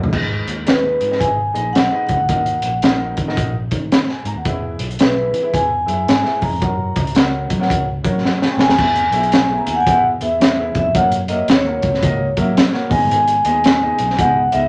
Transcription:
0.03 G1, floor tom
0.12 G#1 G#2 D#4 G#4 B4 D#5, kick, crash
0.47 D#2, closed hi-hat
0.65 D#2 D#4 G#4 B4 D#5, snare, closed hi-hat
1.01 G#2, closed hi-hat
1.10 D#4 G#4 B4 D#5, snare
1.20 G#1 G#5, kick, closed hi-hat
1.53 A#1 D#4 G#4 B4 D#5, closed hi-hat
1.73 B1 F#5, snare, closed hi-hat
1.91 D#4 G#4 B4 D#5
2.07 C#2 F#5, kick, closed hi-hat
2.19 D2
2.28 D#2 D#3 D#4 F#4 A#4 D#5, kick, closed hi-hat
2.46 closed hi-hat
2.62 A#1, closed hi-hat
2.82 A#1 D#4 F#4 A#4 F#5, snare, closed hi-hat
3.17 D#3, kick, closed hi-hat
3.27 D#4 F#4 A#4 D#5, snare
3.37 A#1, kick, closed hi-hat
3.71 D#3, kick, closed hi-hat
3.92 snare, closed hi-hat
4.09 G#5, snare
4.25 G#2 A#5, closed hi-hat
4.35 D#2 F#5
4.45 E2 E3 E4 G#4 B4 E5, kick, closed hi-hat
4.79 B1, closed hi-hat
4.91 closed hi-hat
4.99 B1 E4 G#4 B4 E5, snare, closed hi-hat
5.33 E3, closed hi-hat
5.43 E4 G#4 B4 E5
5.53 E2 G#5, kick, closed hi-hat
5.86 F#2 E4 G#4 B4 E5, closed hi-hat
6.08 G#2 G#5, snare, closed hi-hat
6.23 E4 G#4 B4 E5, snare
6.42 E2 A#5, kick, open hi-hat
6.51 F2
6.60 F#2 F#4 A#4 C#5 F#5, kick, closed hi-hat
6.96 C#2, kick, closed hi-hat
7.07 closed hi-hat
7.15 C#2 F#4 A#4 C#5 F#5, snare, closed hi-hat
7.50 F#3, kick, closed hi-hat
7.60 F#4 A#4 C#5 F#5, snare
7.70 C#2, kick, closed hi-hat
8.04 F#3 F#4 A#4 C#5 F#5, kick, closed hi-hat
8.25 F#5, snare
8.42 G#5, snare
8.51 G5
8.57 B2 G#5, snare
8.68 D#2 A#5, snare
8.78 E2 E3 B3 E4 G#4 B4 E5 G#5, kick, crash
8.96 closed hi-hat
9.12 B1 B3 E4 G#4 B4 E5, closed hi-hat
9.23 closed hi-hat
9.32 snare, closed hi-hat
9.49 B3 E4 G#4 B4 E5
9.58 A#5
9.67 D#2 G#5, closed hi-hat
9.75 F#5
9.80 G#5
9.87 E2 B3 E4 G#4 B4 E5 F#5, kick, closed hi-hat
10.21 E2 B3 E4 G#4 B4 E5, closed hi-hat
10.41 E2, snare, closed hi-hat
10.58 B3 E4 G#4 B4 E5
10.75 F2 E5, kick, closed hi-hat
10.95 F#2 A#3 C#4 F#4 A#4 C#5 F#5, kick, closed hi-hat
11.12 closed hi-hat
11.28 A#3 C#4 F#4 A#4 D#5 E5, closed hi-hat
11.48 D#2 C#5, snare, closed hi-hat
11.66 A#3 C#4 F#4 A#4 C#5
11.82 C#2, kick, closed hi-hat
11.94 snare
12.02 C#2 A#3 C#4 F#4 A#4 D#5, kick, closed hi-hat
12.37 F#3 A#3 C#4 F#4 A#4 E5, kick, closed hi-hat
12.57 snare, closed hi-hat
12.73 A#3 C#4 F#4 A#4 C#5, snare
12.90 G#1 G#2 B3 D#4 G#4 B4 D#5 G#5, kick, open hi-hat
13.01 G1
13.11 G#1 G#5, closed hi-hat
13.28 closed hi-hat
13.45 D#2 B3 D#4 G#4 B4 D#5, closed hi-hat
13.64 snare, closed hi-hat
13.82 B3 D#4 G#4 B4 D#5
13.98 B1, closed hi-hat
14.10 snare
14.16 C#2 B3 D#4 G#4 F#5 G#5, kick, closed hi-hat
14.20 B4 D#5
14.52 C#2 B3 D#4 G#4 B4 D#5 E5, closed hi-hat

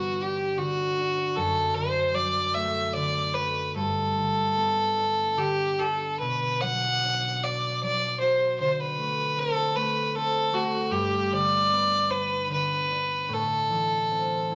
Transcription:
Already playing: G2 D3 B3 F#4
0.20 D4 G4
0.58 D3 F#4
0.98 D4
1.36 F#2 A4
1.75 D3 C5
2.15 F#3 D5
2.54 A3 E5
2.93 D3 D5
3.34 A3 B4
3.75 G2 A4
4.17 D3
4.56 B3
4.96 D4
5.37 D3 G4
5.79 D4 A4
6.20 B2 B4
6.62 F#3 F#5
7.03 D4
7.43 F#4 D5
7.83 F#3 D5
8.20 F#4 C5
8.60 D3 C5
8.71 C5
8.80 B4
8.98 A3
9.38 C4 A4
9.76 A3 B4
10.07 B4
10.16 C4 A4
10.53 A3 F#4
10.90 G2 G4
11.32 D3 D5
11.70 B3
12.09 D4 B4
12.49 D3 B4
12.91 D4
13.29 A2
13.34 A4
13.70 E3
14.10 C4
14.51 E4

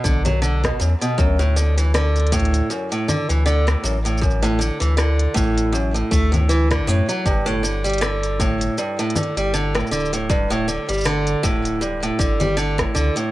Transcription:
0.04 B1 D3, kick, shaker
0.25 F#3, closed hi-hat, low conga, shaker
0.42 D3, shaker
0.63 B2, kick, cross-stick, closed hi-hat, shaker
0.80 E2 F#2, shaker
1.01 B2, closed hi-hat, shaker
1.18 D2 F#2, kick, shaker
1.39 A2, shaker
1.56 D3, shaker
1.78 E3, closed hi-hat, shaker
1.94 D3, cross-stick, shaker
2.16 closed hi-hat, shaker
2.20 closed hi-hat
2.27 closed hi-hat
2.32 A2, kick, closed hi-hat, shaker
2.40 closed hi-hat
2.45 closed hi-hat
2.54 closed hi-hat, shaker
2.70 F#2, shaker
2.92 A2, closed hi-hat, shaker
3.08 D3, low conga, shaker
3.29 D2 E3, closed hi-hat, shaker
3.46 D3, shaker
3.67 A2, cross-stick, closed hi-hat, shaker
3.84 A1 F#2, shaker
4.05 A2, closed hi-hat, shaker
4.18 F#2, shaker
4.22 kick, shaker
4.30 shaker
4.42 A2, closed hi-hat, shaker
4.59 D3, shaker
4.80 D2 E3, closed hi-hat, shaker
4.97 D3, cross-stick, shaker
5.19 closed hi-hat
5.34 A1 A2, kick, shaker
5.58 closed hi-hat, shaker
5.73 F#2, shaker
5.94 A2, closed hi-hat, shaker
6.11 D2 A3, kick, shaker
6.32 A2, closed hi-hat, low conga, shaker
6.49 E3, shaker
6.71 D3, kick, cross-stick, closed hi-hat, shaker
6.87 F#2 A2, shaker
7.09 F#3, closed hi-hat, shaker
7.26 G1 G2, kick, shaker
7.46 A2, closed hi-hat, shaker
7.63 D3, shaker
7.84 G3, closed hi-hat, shaker
7.90 closed hi-hat
7.93 closed hi-hat
7.98 D3, closed hi-hat
8.02 cross-stick, shaker
8.23 closed hi-hat, shaker
8.40 A2, kick, shaker
8.61 closed hi-hat, shaker
8.78 G2, shaker
8.99 A2, closed hi-hat, shaker
9.10 closed hi-hat
9.16 D3, low conga, shaker
9.23 closed hi-hat
9.37 G1 G3, closed hi-hat, shaker
9.54 D3, shaker
9.75 A2, cross-stick, closed hi-hat, shaker
9.80 shaker
9.87 shaker
9.91 D1 D3, shaker
10.00 shaker
10.05 shaker
10.13 A2, closed hi-hat, shaker
10.30 G2, kick, shaker
10.50 A2, closed hi-hat, shaker
10.68 D3, shaker
10.89 G1 G3, closed hi-hat, shaker
10.93 shaker
10.98 shaker
11.01 shaker
11.03 D3, cross-stick, shaker
11.27 closed hi-hat, shaker
11.43 D1 A2, kick, shaker
11.65 closed hi-hat, shaker
11.81 G2, shaker
12.03 A2, closed hi-hat, shaker
12.19 G1 D3, kick, shaker
12.40 G3, closed hi-hat, low conga, shaker
12.57 D3, shaker
12.78 A2, kick, cross-stick, closed hi-hat, shaker
12.95 C#2 D3, shaker
13.16 A2, closed hi-hat, shaker

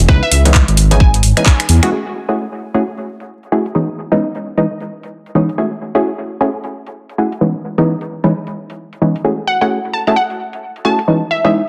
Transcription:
0.08 C#2 E3 G#3 B3 C#4 D#4 B4, kick
0.23 E5
0.31 C#2 E5, open hi-hat
0.45 E3 G#3 B3 C#4 D#4, closed hi-hat
0.54 kick, clap
0.68 G#1, closed hi-hat
0.77 open hi-hat
0.91 E3 G#3 B3 C#4 D#4 G#5, closed hi-hat
1.00 G#5, kick
1.14 closed hi-hat
1.23 open hi-hat
1.37 E3 G#3 B3 C#4 D#4 G#5, finger snap, closed hi-hat
1.46 G#5, kick, clap
1.60 finger snap, closed hi-hat
1.69 E2, open hi-hat
1.83 E3 G#3 B3 C#4 F#4, finger snap, closed hi-hat
1.92 A3 C#4 E4 G#4
2.29 A3 C#4 E4 F#4 G#4, closed hi-hat
2.74 A3 C#4 E4 F#4 G#4, closed hi-hat
2.97 closed hi-hat
3.20 closed hi-hat
3.43 closed hi-hat
3.52 A3 C#4 E4 F#4 G#4
3.66 closed hi-hat
3.75 E3 G#3 B3 C#4 D#4
4.12 E3 G#3 B3 C#4 D#4, closed hi-hat
4.35 closed hi-hat
4.58 E3 G#3 B3 C#4 D#4, closed hi-hat
4.80 closed hi-hat
5.03 closed hi-hat
5.26 closed hi-hat
5.35 E3 G#3 B3 C#4 D#4
5.49 closed hi-hat
5.58 A3 C#4 E4 F#4 G#4
5.95 A3 C#4 E4 F#4 G#4, closed hi-hat
6.41 A3 C#4 E4 F#4 G#4, closed hi-hat
6.64 closed hi-hat
6.87 closed hi-hat
7.09 closed hi-hat
7.18 A3 C#4 E4 F#4 G#4
7.32 closed hi-hat
7.41 E3 G#3 B3 C#4 D#4
7.78 E3 G#3 B3 C#4 D#4, closed hi-hat
8.01 closed hi-hat
8.24 E3 G#3 B3 C#4 D#4, closed hi-hat
8.47 closed hi-hat
8.70 closed hi-hat
8.93 closed hi-hat
9.02 E3 G#3 B3 C#4 D#4
9.16 closed hi-hat
9.24 A3 C#4 E4 F#4 G#4
9.47 F#5
9.61 A3 C#4 E4 F#4 G#4 F#5, closed hi-hat
9.93 A5
10.07 A3 C#4 E4 F#4 G#4 A5, closed hi-hat
10.16 F#5
10.30 closed hi-hat
10.53 closed hi-hat
10.76 closed hi-hat
10.85 A3 C#4 E4 F#4 G#4 A5
10.99 closed hi-hat
11.08 E3 G#3 B3 C#4 D#4
11.31 E5
11.44 E3 G#3 B3 C#4 D#4 E5, closed hi-hat

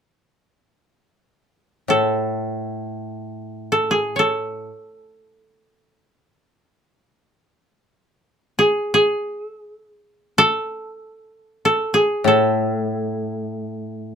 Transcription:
1.88 A2 A4
3.72 A4
3.91 G#4
4.16 A4 C#5
8.59 G#4
8.94 G#4
10.38 A4
11.65 A4
11.94 G#4
12.24 A2 A4

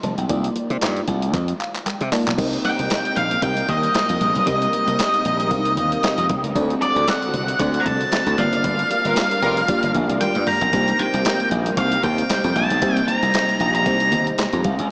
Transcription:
0.03 F1 A5, closed hi-hat, high conga
0.18 B1 G5, closed hi-hat
0.29 C2 A#3 D#4 F4 D5, kick, closed hi-hat, muted conga
0.44 closed hi-hat
0.56 closed hi-hat, muted conga
0.70 C3, closed hi-hat
0.81 G2, snare, clap, closed hi-hat, high conga
0.97 closed hi-hat
1.08 C2, kick, closed hi-hat
1.22 closed hi-hat
1.34 F2, kick, clap, closed hi-hat, muted conga
1.48 closed hi-hat
1.60 F5, clap, closed hi-hat
1.75 clap, closed hi-hat
1.86 G5, clap, closed hi-hat, high conga
2.01 C3, closed hi-hat
2.11 A#3 D#4 F4 D5 A5, clap, open hi-hat, high conga
2.27 B1, clap, closed hi-hat
2.38 C2 C3 G3 A#3 C4 D#4 G4 A#4 D#5, kick, closed hi-hat, crash, muted conga
2.53 closed hi-hat
2.65 G5, closed hi-hat, muted conga
2.79 C2, closed hi-hat
2.90 snare, clap, closed hi-hat, high conga
3.05 closed hi-hat
3.16 A#1 F5, closed hi-hat
3.31 closed hi-hat
3.42 C2 C4 D#4 G4 A#4 D#5 G5, kick, closed hi-hat, muted conga
3.57 closed hi-hat
3.69 D#2 D#5, kick, closed hi-hat
3.83 closed hi-hat
3.94 snare, clap, closed hi-hat, high conga
4.09 F2, closed hi-hat
4.21 A#1, closed hi-hat, high conga
4.35 B1, closed hi-hat
4.47 C2 C4 D#4 G4 A#4 D#5, kick, closed hi-hat, muted conga
4.62 closed hi-hat
4.73 closed hi-hat, muted conga
4.87 C2, closed hi-hat
4.99 snare, clap, closed hi-hat, high conga
5.14 closed hi-hat
5.25 A#1, closed hi-hat
5.40 closed hi-hat
5.51 C2 C4 D4 G4 A#4 F5, kick, closed hi-hat, muted conga
5.57 D#4
5.65 closed hi-hat
5.77 D#2, closed hi-hat, muted conga, low conga
5.92 closed hi-hat
6.03 D#5, snare, clap, closed hi-hat, high conga
6.18 F2, closed hi-hat
6.29 C2 G5, kick, closed hi-hat, high conga
6.44 C#2, closed hi-hat
6.55 D2 D3 A3 C4 D4 F#4 A4 D5, kick, closed hi-hat, muted conga
6.70 closed hi-hat
6.82 D5, closed hi-hat, muted conga
6.96 D2, closed hi-hat
7.08 F#5, snare, clap, closed hi-hat, high conga
7.22 closed hi-hat
7.34 C2, closed hi-hat
7.48 closed hi-hat
7.59 D2 C4 D4 F#4 A4 D5 F#5, kick, closed hi-hat, muted conga
7.74 closed hi-hat
7.80 A#5
7.86 C2 A5, kick, closed hi-hat, muted conga
8.01 closed hi-hat
8.12 snare, clap, closed hi-hat, high conga
8.27 D2, closed hi-hat
8.38 G1 G3 A#3 D4 F4 G4 A#4 D5 F5, closed hi-hat, high conga
8.53 F#1, closed hi-hat
8.64 G1, kick, closed hi-hat, muted conga
8.79 closed hi-hat
8.91 closed hi-hat, muted conga
9.05 G1 G3 F4 A#4, closed hi-hat
9.16 snare, clap, closed hi-hat, high conga
9.31 closed hi-hat
9.42 F1 G3 F4 A#4, kick, closed hi-hat
9.57 closed hi-hat
9.68 A#3 D4 F4 G4 D5, kick, closed hi-hat, muted conga
9.83 G1, closed hi-hat
9.94 A#1, closed hi-hat, low conga
10.09 C2, closed hi-hat
10.21 G5, closed hi-hat, high tom, high conga
10.35 G2, closed hi-hat
10.47 A#5, mid tom, open hi-hat, high conga
10.61 B1, closed hi-hat, floor tom
10.73 C2 C3 G3 A#3 C4 D#4 G4 C5, kick, closed hi-hat, muted conga
10.88 closed hi-hat
10.99 G5, closed hi-hat, muted conga
11.14 C2, closed hi-hat
11.25 snare, clap, closed hi-hat, high conga
11.40 closed hi-hat
11.51 A#1, closed hi-hat
11.66 closed hi-hat
11.77 C2 A#3 C4 D#4 G4 C5 F5, kick, closed hi-hat, muted conga
11.92 closed hi-hat
12.03 D#2 G5, kick, closed hi-hat, muted conga
12.18 closed hi-hat
12.30 snare, clap, closed hi-hat, high conga
12.44 F2, closed hi-hat
12.56 A#1 A5, closed hi-hat, high conga
12.70 B1, closed hi-hat
12.81 C2 A#3 C4 D#4 G4 C5, kick, closed hi-hat, muted conga
12.97 closed hi-hat
13.08 A#5, closed hi-hat, muted conga
13.23 C2, closed hi-hat
13.34 snare, clap, closed hi-hat, high conga
13.49 closed hi-hat
13.60 A#1, closed hi-hat
13.75 A#5, closed hi-hat
13.86 C2 A#3 C4 D#4 G4 C5, kick, closed hi-hat, muted conga
14.00 closed hi-hat
14.12 D#2, closed hi-hat, low conga
14.27 closed hi-hat
14.38 C6, snare, clap, closed hi-hat, high conga
14.53 F2, closed hi-hat
14.64 C2 F5, kick, closed hi-hat, high conga
14.79 C#2, closed hi-hat

